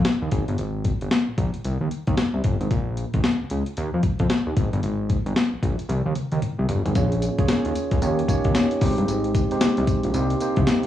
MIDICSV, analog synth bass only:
0, 0, Header, 1, 2, 480
1, 0, Start_track
1, 0, Tempo, 530973
1, 527, Time_signature, 4, 2, 24, 8
1, 9825, End_track
2, 0, Start_track
2, 0, Title_t, "Analog synth bass"
2, 0, Program_c, 0, 38
2, 197, Note_on_c, 0, 39, 80
2, 270, Note_off_c, 0, 39, 0
2, 287, Note_on_c, 0, 32, 93
2, 406, Note_off_c, 0, 32, 0
2, 438, Note_on_c, 0, 31, 99
2, 511, Note_off_c, 0, 31, 0
2, 527, Note_on_c, 0, 32, 99
2, 840, Note_off_c, 0, 32, 0
2, 917, Note_on_c, 0, 31, 93
2, 991, Note_off_c, 0, 31, 0
2, 1158, Note_on_c, 0, 34, 49
2, 1194, Note_off_c, 0, 34, 0
2, 1246, Note_on_c, 0, 34, 93
2, 1366, Note_off_c, 0, 34, 0
2, 1489, Note_on_c, 0, 36, 105
2, 1608, Note_off_c, 0, 36, 0
2, 1634, Note_on_c, 0, 39, 89
2, 1708, Note_off_c, 0, 39, 0
2, 1875, Note_on_c, 0, 39, 96
2, 1949, Note_off_c, 0, 39, 0
2, 2114, Note_on_c, 0, 36, 75
2, 2189, Note_off_c, 0, 36, 0
2, 2210, Note_on_c, 0, 31, 86
2, 2328, Note_off_c, 0, 31, 0
2, 2355, Note_on_c, 0, 32, 93
2, 2430, Note_off_c, 0, 32, 0
2, 2451, Note_on_c, 0, 34, 109
2, 2762, Note_off_c, 0, 34, 0
2, 2838, Note_on_c, 0, 32, 93
2, 2911, Note_off_c, 0, 32, 0
2, 3080, Note_on_c, 0, 37, 48
2, 3115, Note_off_c, 0, 37, 0
2, 3172, Note_on_c, 0, 37, 87
2, 3290, Note_off_c, 0, 37, 0
2, 3414, Note_on_c, 0, 39, 105
2, 3530, Note_off_c, 0, 39, 0
2, 3561, Note_on_c, 0, 41, 88
2, 3633, Note_off_c, 0, 41, 0
2, 3795, Note_on_c, 0, 41, 87
2, 3869, Note_off_c, 0, 41, 0
2, 4038, Note_on_c, 0, 39, 80
2, 4111, Note_off_c, 0, 39, 0
2, 4130, Note_on_c, 0, 32, 92
2, 4248, Note_off_c, 0, 32, 0
2, 4273, Note_on_c, 0, 31, 105
2, 4348, Note_off_c, 0, 31, 0
2, 4367, Note_on_c, 0, 32, 109
2, 4680, Note_off_c, 0, 32, 0
2, 4754, Note_on_c, 0, 31, 100
2, 4829, Note_off_c, 0, 31, 0
2, 4996, Note_on_c, 0, 34, 46
2, 5033, Note_off_c, 0, 34, 0
2, 5088, Note_on_c, 0, 34, 93
2, 5207, Note_off_c, 0, 34, 0
2, 5324, Note_on_c, 0, 36, 105
2, 5444, Note_off_c, 0, 36, 0
2, 5475, Note_on_c, 0, 39, 96
2, 5549, Note_off_c, 0, 39, 0
2, 5715, Note_on_c, 0, 39, 90
2, 5789, Note_off_c, 0, 39, 0
2, 5953, Note_on_c, 0, 36, 90
2, 6028, Note_off_c, 0, 36, 0
2, 6046, Note_on_c, 0, 31, 92
2, 6166, Note_off_c, 0, 31, 0
2, 6196, Note_on_c, 0, 32, 91
2, 6270, Note_off_c, 0, 32, 0
2, 6285, Note_on_c, 0, 34, 108
2, 6599, Note_off_c, 0, 34, 0
2, 6771, Note_on_c, 0, 39, 48
2, 6829, Note_off_c, 0, 39, 0
2, 6919, Note_on_c, 0, 39, 96
2, 6992, Note_off_c, 0, 39, 0
2, 7155, Note_on_c, 0, 37, 85
2, 7229, Note_off_c, 0, 37, 0
2, 7248, Note_on_c, 0, 39, 97
2, 7441, Note_off_c, 0, 39, 0
2, 7637, Note_on_c, 0, 39, 89
2, 7710, Note_off_c, 0, 39, 0
2, 7969, Note_on_c, 0, 32, 98
2, 8088, Note_off_c, 0, 32, 0
2, 8116, Note_on_c, 0, 31, 94
2, 8190, Note_off_c, 0, 31, 0
2, 8207, Note_on_c, 0, 32, 98
2, 8520, Note_off_c, 0, 32, 0
2, 8691, Note_on_c, 0, 36, 49
2, 8750, Note_off_c, 0, 36, 0
2, 8839, Note_on_c, 0, 36, 99
2, 8911, Note_off_c, 0, 36, 0
2, 9077, Note_on_c, 0, 34, 82
2, 9150, Note_off_c, 0, 34, 0
2, 9165, Note_on_c, 0, 36, 106
2, 9359, Note_off_c, 0, 36, 0
2, 9556, Note_on_c, 0, 36, 90
2, 9630, Note_off_c, 0, 36, 0
2, 9825, End_track
0, 0, End_of_file